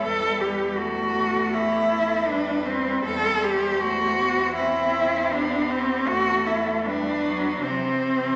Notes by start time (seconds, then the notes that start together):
0.01 E2 G3 A4 B4
0.40 G4
0.77 A3 F#4 A4
1.53 E4 G4
1.90 A4
2.27 G3 D4 B4
2.66 C4
3.05 E2 A4 C5
3.44 G4
3.81 A3 F#4
4.19 B3
4.55 C4 E4 C5
5.32 B3 D4 G4
5.70 C4
6.07 E2 A3 F#4 A4
6.46 E4
6.85 G3 D4 B4
7.25 F#3
7.62 C3 E3 C4 C5
8.03 E3